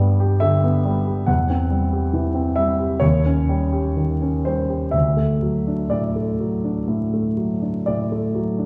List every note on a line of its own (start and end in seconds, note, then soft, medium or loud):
0.00 1.24 G2 medium
0.00 0.33 G3 soft
0.00 0.11 B3 soft
0.00 1.30 D5 medium
0.20 0.55 G4 soft
0.40 0.76 D3 soft
0.40 1.27 E5 medium
0.64 0.98 B3 soft
0.85 1.20 G3 soft
1.07 1.28 G4 soft
1.26 2.99 E2 soft
1.26 2.57 F#5 medium
1.50 1.84 C4 soft
1.70 2.05 G3 soft
1.93 2.27 G4 soft
2.13 2.49 E3 soft
2.34 2.71 C4 soft
2.56 2.93 G3 soft
2.56 3.02 E5 medium
2.79 3.02 G4 soft
3.00 4.89 D#2 soft
3.00 4.43 C#5 medium
3.26 3.63 C#4 soft
3.49 3.87 G3 soft
3.73 4.11 G4 soft
3.96 4.35 D#3 soft
4.22 4.60 C#4 soft
4.45 4.85 G3 soft
4.45 4.94 C5 soft
4.70 4.94 G4 soft
4.91 6.83 D2 soft
4.91 5.90 E5 medium
5.17 5.57 A3 soft
5.42 5.82 F#3 soft
5.67 6.06 D4 soft
5.90 6.30 A2 soft
5.90 7.83 D5 soft
6.16 6.54 A3 soft
6.40 6.78 F#3 soft
6.64 7.02 D4 soft
6.88 7.26 A2 soft
7.14 7.51 A3 soft
7.37 7.75 F#3 soft
7.62 7.99 D4 soft
7.86 8.24 A2 soft
7.86 8.66 D5 soft
8.12 8.48 A3 soft
8.35 8.66 F#3 soft
8.58 8.66 D4 soft